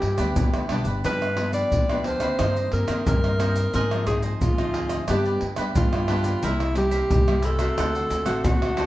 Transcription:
Already playing: nylon-string guitar G2, cavaquinho G4 B4 D5, alto saxophone G4
0.02 upright bass G2, pandeiro
0.17 upright bass D2, nylon-string guitar G3 B3 D4, cavaquinho G4 B4 D5, pandeiro, tamborim, shaker
0.36 upright bass F2, nylon-string guitar D3, pandeiro, shaker, surdo
0.54 upright bass D2, cavaquinho G4 B4 D5, pandeiro, tamborim, shaker
0.69 upright bass B1, nylon-string guitar G3 B3 D4, cavaquinho D4 G4 B4 D5, pandeiro, tamborim
0.85 upright bass G1, cavaquinho G4 B4 D5, pandeiro, shaker
1.04 upright bass G2, nylon-string guitar G2 F3 B3 D4, cavaquinho D4 G4 B4 F5, alto saxophone B4, pandeiro, shaker, surdo
1.21 cavaquinho G4 B4 F5, pandeiro, tamborim, shaker
1.37 nylon-string guitar F3 B3 D4, muted cavaquinho stroke, pandeiro, tamborim
1.53 cavaquinho G4 B4 F5, alto saxophone D5, pandeiro, shaker
1.72 upright bass D2, nylon-string guitar D3, pandeiro, shaker, surdo
1.89 nylon-string guitar F3 B3 D4, cavaquinho G4 B4 F5, pandeiro, tamborim, shaker
2.04 cavaquinho D4 G4 B4 F5, alto saxophone C5, pandeiro
2.20 nylon-string guitar D#3 A#3 C4, cavaquinho G4 B4 F5, pandeiro, tamborim, shaker
2.39 nylon-string guitar G2, upright bass G2, cavaquinho D#4 A#4 C5 D#5, pandeiro, tamborim, shaker, surdo
2.56 cavaquinho A#4 C5 D#5, pandeiro, shaker
2.72 upright bass G2, nylon-string guitar D#3 A#3 C4, alto saxophone A#4, pandeiro
2.87 upright bass G2, nylon-string guitar D#3 A#3 C4, cavaquinho A#4 C5 D#5, pandeiro, tamborim, shaker
3.06 nylon-string guitar G2, upright bass G2, alto saxophone A#4, pandeiro, shaker, surdo
3.24 cavaquinho A#4 C5 D#5, pandeiro, tamborim, shaker
3.39 nylon-string guitar D#3 A#3 C4, cavaquinho D#4 A#4 C5 D#5, pandeiro, tamborim, shaker
3.55 cavaquinho A#4 C5 D#5, pandeiro, shaker
3.74 nylon-string guitar G#2 F3 C4 D#4, upright bass G#2, cavaquinho F4 G#4 C5 D#5, alto saxophone A#4, pandeiro, shaker, surdo
3.91 nylon-string guitar F3 C4 D#4, cavaquinho G#4 C5 D#5, pandeiro, tamborim, shaker
4.07 nylon-string guitar F3 C4 D#4, alto saxophone G#4, muted cavaquinho stroke, pandeiro, tamborim, shaker, surdo
4.22 cavaquinho G#4 C5 D#5, pandeiro, shaker
4.41 upright bass D2, nylon-string guitar G#2, alto saxophone F4, pandeiro, shaker, surdo
4.58 nylon-string guitar F3 C4 D#4, cavaquinho G#4 C5 D#5, pandeiro, tamborim, shaker
4.73 cavaquinho F4 G#4 C5 D#5, pandeiro
4.89 cavaquinho G#4 C5 D#5, pandeiro, tamborim, shaker
5.08 nylon-string guitar G2 G3 B3 D4, upright bass G2, cavaquinho D4 G4 B4 D5, alto saxophone G4, pandeiro, tamborim, shaker, surdo
5.25 cavaquinho G4 B4 D5, pandeiro, shaker
5.41 upright bass G2, pandeiro
5.56 upright bass D2, nylon-string guitar G3 B3 D4, cavaquinho G4 B4 D5, pandeiro, tamborim, shaker
5.75 upright bass G2, nylon-string guitar D3, alto saxophone F4, pandeiro, shaker, surdo
5.93 cavaquinho G4 B4 D5, pandeiro, tamborim, shaker
6.08 nylon-string guitar G3 B3 D4, cavaquinho D4 G4 B4 D5, pandeiro, tamborim
6.24 cavaquinho G4 B4 D5, pandeiro, shaker
6.42 upright bass C2, nylon-string guitar C3 G3 A#3 E4, cavaquinho E4 A#4 C5 E5, alto saxophone E4, pandeiro, shaker, surdo
6.60 cavaquinho A#4 C5 E5, pandeiro, tamborim, shaker
6.75 nylon-string guitar G3 A#3 E4, alto saxophone G4, muted cavaquinho stroke, pandeiro, tamborim, shaker
6.91 cavaquinho A#4 C5 E5, pandeiro, shaker
7.10 upright bass C2, nylon-string guitar G2, pandeiro, shaker, surdo
7.28 nylon-string guitar G3 A#3 E4, cavaquinho A#4 C5 E5, pandeiro, tamborim, shaker
7.42 cavaquinho E4 A#4 C5 E5, alto saxophone A4, pandeiro, shaker
7.58 nylon-string guitar A3 C4 F#4, cavaquinho A#4 C5 E5, pandeiro, tamborim, shaker
7.77 upright bass D2, nylon-string guitar D3, cavaquinho D4 A4 C5 F#5, pandeiro, tamborim, shaker, surdo
7.95 cavaquinho A4 C5 F#5, pandeiro, shaker
8.10 upright bass D2, pandeiro, shaker
8.26 upright bass A1, nylon-string guitar A3 C4 F#4, cavaquinho A4 C5 F#5, pandeiro, tamborim, shaker
8.44 upright bass D2, nylon-string guitar A2, alto saxophone F#4, pandeiro, shaker, surdo
8.62 cavaquinho A4 C5 F#5, pandeiro, tamborim, shaker
8.77 nylon-string guitar A3 C4 F#4, cavaquinho D4 A4 C5 F#5, pandeiro, tamborim

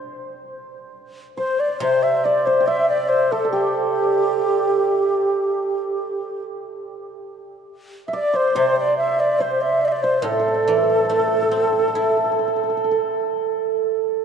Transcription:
Already playing: hammered dulcimer C5
1.37 hammered dulcimer C5, xiao C5
1.59 xiao D5
1.80 guzheng C3, xiao C5, hammered dulcimer C5
2.03 xiao E5
2.24 xiao D5, hammered dulcimer D5
2.46 xiao C5, hammered dulcimer C5
2.60 hammered dulcimer G5
2.67 xiao E5, hammered dulcimer E5
2.89 xiao D5
3.09 xiao C5
3.32 xiao A4, hammered dulcimer A4
3.45 hammered dulcimer A4
3.51 xiao G4, hammered dulcimer G4
8.07 xiao E5, hammered dulcimer E5
8.13 hammered dulcimer D5, xiao D5
8.34 hammered dulcimer C5, xiao C5
8.55 guzheng C3, hammered dulcimer C5, xiao C5
8.76 xiao D5
8.96 xiao E5
9.20 xiao D5
9.39 xiao C5, hammered dulcimer C5
9.61 xiao E5
9.81 xiao D5
9.87 xiao E5
9.92 xiao D5
10.03 xiao C5, hammered dulcimer C5
10.22 guzheng A2, hammered dulcimer A4, xiao A4
10.32 hammered dulcimer A4
10.40 hammered dulcimer A4
10.48 hammered dulcimer A4
10.54 hammered dulcimer A4
10.63 hammered dulcimer A4
10.68 guzheng E3, hammered dulcimer A4
10.77 hammered dulcimer A4
10.84 hammered dulcimer A4
10.90 hammered dulcimer A4
10.98 hammered dulcimer A4
11.05 hammered dulcimer A4
11.09 guzheng A3, hammered dulcimer A4
11.20 hammered dulcimer A4
11.28 hammered dulcimer A4
11.34 hammered dulcimer A4
11.42 hammered dulcimer A4
11.49 guzheng C4, hammered dulcimer A4
11.56 hammered dulcimer A4
11.63 hammered dulcimer A4
11.72 hammered dulcimer A4
11.79 hammered dulcimer A4
11.88 hammered dulcimer A4
11.94 guzheng E4, hammered dulcimer A4
12.02 hammered dulcimer A4
12.10 hammered dulcimer A4
12.17 hammered dulcimer A4
12.24 hammered dulcimer A4
12.32 hammered dulcimer A4
12.39 hammered dulcimer A4
12.48 hammered dulcimer A4
12.56 hammered dulcimer A4
12.63 hammered dulcimer A4
12.70 hammered dulcimer A4
12.77 hammered dulcimer A4
12.84 hammered dulcimer A4
12.91 hammered dulcimer A4

